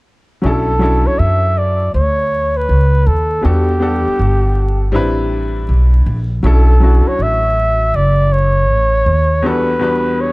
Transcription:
0.42 upright bass B1, upright piano F#3 C#4 D4 E4, flugelhorn A4
0.46 upright piano A4
0.79 upright piano F#3 C#4 D4 E4 A4
1.06 flugelhorn C#5, muted upright bass stroke
1.19 upright bass F#2, flugelhorn E5
1.58 flugelhorn D5
1.94 upright bass D2, flugelhorn C#5
2.57 flugelhorn B4
2.69 upright bass C#2
3.07 upright bass D#2, flugelhorn A4
3.41 upright bass E2, upright piano G3 B3 D4 F#4 A4, flugelhorn G4
3.79 upright piano G3 B3 D4 A4 F#5
4.07 muted upright bass stroke
4.19 upright bass G1
4.92 upright bass A1, upright piano G3 C4 D4 E4 B4
5.69 upright bass B1
6.06 upright bass A#1
6.43 upright bass B1, upright piano F#3 C#4 D4 E4 A4, flugelhorn A4
6.80 upright piano F#3 C#4 D4 E4 F#4
7.06 flugelhorn C#5, muted upright bass stroke
7.19 upright bass A1, flugelhorn E5
7.94 upright bass F#1, flugelhorn D5
8.33 flugelhorn C#5
8.69 upright bass A1
9.06 upright bass D#2
9.42 upright piano E2 G3 B3 D4 F#4 A4
9.47 flugelhorn B4
9.79 upright piano E2 G3 B3 D4 F#4 B4
10.21 flugelhorn C#5

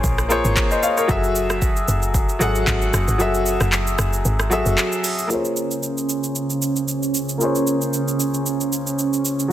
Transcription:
Already playing: grand piano A#3 F4 G#4 C5 C#5
0.04 log drum bass A#1, kick, shaker
0.18 cross-stick, shaker
0.29 grand piano A#3 F4 G#4 C5 C#5, shaker
0.45 log drum bass G#1, shaker
0.57 kick, clap, shaker
0.71 grand piano C5 D#5, shaker
0.83 grand piano C#5 F5, shaker
0.97 grand piano A#4 C#5, shaker
1.08 log drum bass F#1, grand piano F#3 F#4 G#4 A4 E5, kick, shaker
1.24 shaker
1.35 shaker
1.50 cross-stick, shaker
1.62 kick, shaker
1.77 shaker
1.88 log drum bass F#1, shaker
2.02 shaker
2.14 kick, shaker
2.29 shaker
2.39 log drum bass G#1, grand piano F#3 F#4 G#4 A4 F#5, shaker
2.55 shaker
2.67 log drum bass G#1, kick, clap, shaker
2.82 shaker
2.93 log drum bass F#1, cross-stick, shaker
3.08 log drum bass G#1, shaker
3.18 log drum bass F#1, grand piano F#3 F#4 G#4 A4 E5, shaker
3.34 shaker
3.46 shaker
3.61 log drum bass F#1, cross-stick, shaker
3.72 clap, shaker
3.87 shaker
3.99 log drum bass F#1, cross-stick, shaker
4.13 shaker
4.25 log drum bass G#1, shaker
4.40 cross-stick, shaker
4.50 grand piano F#3 F#4 G#4 A4 E5, shaker
4.66 log drum bass F#1, shaker
4.78 clap, shaker
4.92 shaker
5.04 open hi-hat, shaker
5.19 shaker
5.27 string machine C#3 C#4, grand piano A#3 F4 G#4, shaker
5.32 grand piano C5 C#5
5.45 shaker
5.57 shaker
5.71 shaker
5.83 shaker
5.98 shaker
6.09 shaker
6.24 shaker
6.36 shaker
6.50 shaker
6.62 shaker
6.76 shaker
6.88 shaker
7.03 shaker
7.15 shaker
7.29 shaker
7.38 grand piano A#3 F4 G#4, shaker
7.42 grand piano C5 C#5
7.55 shaker
7.67 shaker
7.82 shaker
7.93 shaker
8.08 shaker
8.20 shaker
8.34 shaker
8.46 shaker
8.61 shaker
8.73 shaker
8.87 shaker
8.99 shaker
9.13 shaker
9.25 shaker
9.40 shaker
9.48 grand piano F#3

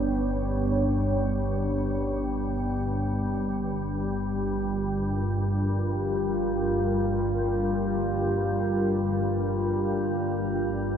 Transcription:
Already playing: synth drone G1 G2, ambient pad B3 D4 C#5, singing bowl D4
3.22 ambient pad G3
3.84 ambient pad F4
4.06 ambient pad A#4

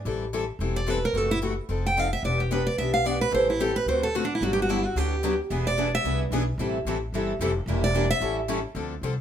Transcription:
0.05 upright bass A1, steel-string acoustic guitar E3 G3 C4 E4 A4
0.33 steel-string acoustic guitar E3 G3 C4 E4 A4
0.59 upright bass E1, steel-string acoustic guitar E3 G3 C4 E4 A4
0.76 steel-string acoustic guitar D5
0.87 steel-string acoustic guitar E3 G3 C4 E4 A4 B4
1.05 steel-string acoustic guitar A#4
1.13 upright bass F#1, steel-string acoustic guitar C3 E3 A3 E4 F#4
1.17 steel-string acoustic guitar A4
1.31 steel-string acoustic guitar E4
1.42 steel-string acoustic guitar C3 E3 A3 E4 F#4
1.69 upright bass F1, steel-string acoustic guitar F3 C4 D#4 A4
1.86 steel-string acoustic guitar G5
1.97 steel-string acoustic guitar F3 C4 D#4 A4 F5
2.13 steel-string acoustic guitar E5
2.23 upright bass E1, steel-string acoustic guitar E3 B3 D4 G4 D5
2.40 steel-string acoustic guitar G4
2.51 steel-string acoustic guitar E3 B3 D4 G4 B4
2.67 steel-string acoustic guitar D5
2.77 upright bass B1, steel-string acoustic guitar E3 B3 D4 G4 E5
2.94 steel-string acoustic guitar F5
3.04 steel-string acoustic guitar E3 B3 D4 G4 D5
3.21 steel-string acoustic guitar B4
3.31 upright bass A1, steel-string acoustic guitar E3 G3 C4 E4 A4 C5
3.50 steel-string acoustic guitar E4
3.60 steel-string acoustic guitar E3 G3 C4 E4 G4 A4
3.76 steel-string acoustic guitar B4
3.86 upright bass D2, steel-string acoustic guitar D3 A3 C4 F#4 A4 C5
4.03 steel-string acoustic guitar A4
4.15 steel-string acoustic guitar D3 A3 C4 F#4 A4
4.25 steel-string acoustic guitar D4
4.35 steel-string acoustic guitar E4
4.41 upright bass G1, steel-string acoustic guitar D3 F#3 B3 D4 F#4 G4
4.53 steel-string acoustic guitar G4
4.62 steel-string acoustic guitar F#4
4.69 steel-string acoustic guitar D3 F#3 B3 D4 E4 G4
4.85 steel-string acoustic guitar F#4
4.95 upright bass D2, steel-string acoustic guitar D3 F#3 B3 D4 G4
5.23 steel-string acoustic guitar D3 F#3 B3 D4 G4
5.50 upright bass E1, steel-string acoustic guitar E3 B3 D4 G#4 B4
5.67 steel-string acoustic guitar D5
5.77 steel-string acoustic guitar E3 B3 D4 G#4 B4
5.95 steel-string acoustic guitar E5
6.04 upright bass C2, steel-string acoustic guitar E3 B3 D4 G#4 B4
6.31 upright bass B1, steel-string acoustic guitar E3 B3 D4 G#4 B4
6.58 upright bass A1, steel-string acoustic guitar E3 G3 C4 E4 A4
6.85 upright bass A1, steel-string acoustic guitar E3 G3 C4 E4 A4
7.12 upright bass G1, steel-string acoustic guitar E3 G3 C4 E4 A4
7.39 upright bass F1, steel-string acoustic guitar E3 G3 C4 E4 A4
7.66 upright bass E1, steel-string acoustic guitar E3 G3 A#3 D4 E4 G4 A#4
7.84 steel-string acoustic guitar D5
7.95 steel-string acoustic guitar E3 G3 A#3 D4 E4 G4 A#4
8.11 steel-string acoustic guitar E5
8.20 upright bass A1, steel-string acoustic guitar E3 G3 C#4 E4 A4
8.48 steel-string acoustic guitar E3 G3 C#4 E4 A4
8.75 upright bass D2, steel-string acoustic guitar D3 F3 C4 D4 A4
9.01 upright bass C2, steel-string acoustic guitar D3 F3 C4 D4 A4

